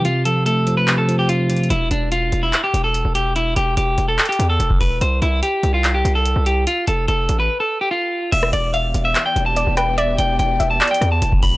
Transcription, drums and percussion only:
0.05 closed hi-hat
0.25 closed hi-hat
0.46 closed hi-hat
0.67 closed hi-hat
0.88 clap, closed hi-hat
1.09 closed hi-hat
1.29 closed hi-hat
1.50 closed hi-hat, open hi-hat
1.57 closed hi-hat
1.63 closed hi-hat
1.70 closed hi-hat
1.91 closed hi-hat
2.12 closed hi-hat
2.32 closed hi-hat
2.53 clap, closed hi-hat
2.74 closed hi-hat
2.94 closed hi-hat
3.15 closed hi-hat
3.36 closed hi-hat
3.56 closed hi-hat
3.77 closed hi-hat
3.98 closed hi-hat
4.19 clap, closed hi-hat
4.26 closed hi-hat
4.32 closed hi-hat
4.40 closed hi-hat
4.60 closed hi-hat
4.70 kick
4.81 open hi-hat
5.01 closed hi-hat
5.22 closed hi-hat
5.43 closed hi-hat
5.63 closed hi-hat
5.84 clap, closed hi-hat
6.05 closed hi-hat
6.26 closed hi-hat
6.46 closed hi-hat
6.67 closed hi-hat
6.87 closed hi-hat
7.08 closed hi-hat
7.29 closed hi-hat
8.32 closed hi-hat, crash
8.43 cross-stick
8.53 closed hi-hat
8.74 closed hi-hat
8.94 closed hi-hat
9.15 clap, closed hi-hat
9.36 closed hi-hat
9.56 closed hi-hat
9.77 cross-stick, closed hi-hat
9.98 closed hi-hat
10.18 closed hi-hat
10.39 closed hi-hat
10.60 closed hi-hat
10.81 clap, closed hi-hat
10.88 closed hi-hat
10.94 closed hi-hat
11.01 cross-stick, closed hi-hat
11.22 closed hi-hat
11.32 kick
11.43 open hi-hat

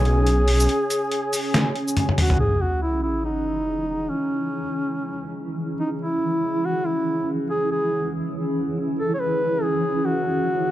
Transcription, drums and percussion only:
0.05 closed hi-hat
0.27 closed hi-hat
0.48 open hi-hat
0.60 shaker
0.69 closed hi-hat
0.90 closed hi-hat, shaker
1.12 closed hi-hat
1.33 open hi-hat, shaker
1.54 snare, closed hi-hat
1.76 closed hi-hat
1.88 shaker
1.97 closed hi-hat, high tom
2.09 high tom
2.18 open hi-hat, mid tom
2.30 mid tom

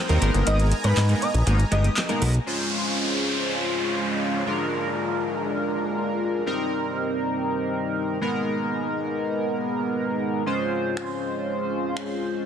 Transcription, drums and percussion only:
0.09 closed hi-hat
0.22 closed hi-hat
0.34 closed hi-hat
0.47 closed hi-hat
0.60 closed hi-hat
0.72 closed hi-hat
0.84 closed hi-hat
0.97 snare, clap, closed hi-hat
1.09 closed hi-hat
1.22 closed hi-hat
1.34 closed hi-hat
1.47 closed hi-hat
1.60 closed hi-hat
1.72 closed hi-hat
1.84 closed hi-hat
1.97 snare, clap, closed hi-hat
2.09 closed hi-hat
2.22 open hi-hat
2.34 closed hi-hat
10.97 finger snap
11.97 finger snap

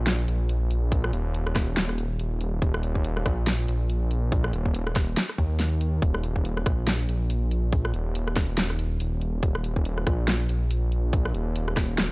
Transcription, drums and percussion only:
0.07 snare, closed hi-hat
0.28 closed hi-hat
0.49 closed hi-hat
0.71 closed hi-hat
0.92 kick, closed hi-hat
1.04 cross-stick
1.13 closed hi-hat
1.34 closed hi-hat
1.47 cross-stick
1.56 kick, cross-stick, snare, closed hi-hat
1.77 snare, closed hi-hat
1.89 cross-stick
1.98 closed hi-hat
2.19 closed hi-hat
2.41 closed hi-hat
2.62 kick, closed hi-hat
2.74 cross-stick
2.83 closed hi-hat
2.95 kick
3.04 closed hi-hat
3.17 cross-stick
3.26 kick, cross-stick, closed hi-hat
3.47 snare, closed hi-hat
3.68 closed hi-hat
3.90 closed hi-hat
4.11 closed hi-hat
4.32 kick, closed hi-hat
4.44 cross-stick
4.53 closed hi-hat
4.66 kick
4.75 closed hi-hat
4.87 cross-stick
4.96 kick, cross-stick, snare, closed hi-hat
5.17 snare, closed hi-hat
5.29 cross-stick
5.38 kick, closed hi-hat
5.60 snare, closed hi-hat
5.81 closed hi-hat
6.02 kick, closed hi-hat
6.14 cross-stick
6.24 closed hi-hat
6.36 kick
6.45 closed hi-hat
6.57 cross-stick
6.66 kick, cross-stick, closed hi-hat
6.87 snare, closed hi-hat
7.09 closed hi-hat
7.30 closed hi-hat
7.51 closed hi-hat
7.73 kick, closed hi-hat
7.85 cross-stick
7.94 closed hi-hat
8.15 closed hi-hat
8.27 cross-stick
8.36 kick, cross-stick, snare, closed hi-hat
8.58 snare, closed hi-hat
8.70 cross-stick
8.79 closed hi-hat
9.00 closed hi-hat
9.21 closed hi-hat
9.43 kick, closed hi-hat
9.55 cross-stick
9.64 closed hi-hat
9.76 kick
9.85 closed hi-hat
9.98 cross-stick
10.07 kick, cross-stick, closed hi-hat
10.28 snare, closed hi-hat
10.49 closed hi-hat
10.71 closed hi-hat
10.92 closed hi-hat
11.13 kick, closed hi-hat
11.25 cross-stick
11.35 closed hi-hat
11.56 closed hi-hat
11.68 cross-stick
11.77 kick, cross-stick, snare, closed hi-hat
11.98 snare, closed hi-hat

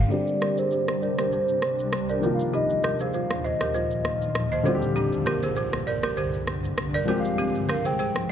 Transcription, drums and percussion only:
0.11 shaker
0.27 shaker
0.41 cross-stick, shaker
0.58 shaker
0.71 shaker
0.88 cross-stick, shaker
1.02 shaker
1.19 cross-stick, shaker
1.32 shaker
1.49 shaker
1.62 cross-stick, shaker
1.79 shaker
1.92 cross-stick, shaker
2.09 shaker
2.23 shaker
2.40 shaker
2.53 shaker
2.70 shaker
2.83 cross-stick, shaker
3.00 shaker
3.13 shaker
3.31 cross-stick, shaker
3.44 shaker
3.61 cross-stick, shaker
3.75 shaker
3.91 shaker
4.05 cross-stick, shaker
4.22 shaker
4.35 cross-stick, shaker
4.52 shaker
4.66 shaker
4.82 shaker
4.96 shaker
5.12 shaker
5.26 cross-stick, shaker
5.43 shaker
5.56 shaker
5.73 cross-stick, shaker
5.87 shaker
6.03 cross-stick, shaker
6.17 shaker
6.34 shaker
6.47 cross-stick, shaker
6.64 shaker
6.78 cross-stick, shaker
6.94 shaker
7.08 shaker
7.25 shaker
7.38 shaker
7.55 shaker
7.68 cross-stick, shaker
7.85 shaker
7.99 shaker
8.16 cross-stick, shaker

